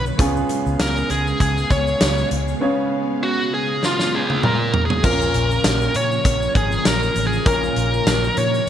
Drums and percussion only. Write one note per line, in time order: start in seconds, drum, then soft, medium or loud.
0.06 shaker soft
0.19 kick loud
0.19 closed hi-hat medium
0.19 shaker medium
0.36 shaker soft
0.49 closed hi-hat medium
0.49 shaker soft
0.66 shaker soft
0.79 snare loud
0.79 closed hi-hat loud
0.79 shaker medium
0.97 shaker soft
1.10 closed hi-hat medium
1.10 shaker medium
1.27 shaker soft
1.40 kick medium
1.40 closed hi-hat medium
1.40 shaker medium
1.58 shaker soft
1.70 kick medium
1.70 closed hi-hat medium
1.70 shaker soft
1.87 shaker soft
2.01 snare loud
2.01 closed hi-hat medium
2.01 shaker medium
2.17 shaker soft
2.31 closed hi-hat medium
2.48 shaker soft
3.83 snare medium
3.99 snare medium
4.30 high tom medium
4.43 mid tom medium
4.74 floor tom loud
4.90 floor tom loud
5.04 kick loud
5.04 crash loud
5.04 shaker medium
5.21 shaker medium
5.34 closed hi-hat medium
5.51 shaker soft
5.64 snare loud
5.64 closed hi-hat loud
5.64 tambourine medium
5.64 shaker medium
5.81 shaker soft
5.95 closed hi-hat medium
5.95 shaker medium
6.12 shaker soft
6.25 kick medium
6.25 closed hi-hat medium
6.25 shaker medium
6.42 shaker medium
6.55 kick medium
6.55 closed hi-hat medium
6.72 shaker soft
6.85 snare loud
6.85 closed hi-hat medium
6.85 tambourine medium
6.85 shaker medium
7.02 shaker soft
7.16 closed hi-hat medium
7.16 shaker medium
7.33 shaker soft
7.46 kick loud
7.46 closed hi-hat medium
7.46 shaker medium
7.63 shaker soft
7.76 closed hi-hat medium
7.93 shaker soft
8.07 snare loud
8.07 closed hi-hat loud
8.07 tambourine medium
8.07 shaker medium
8.24 shaker soft
8.37 closed hi-hat medium
8.37 shaker medium
8.54 shaker soft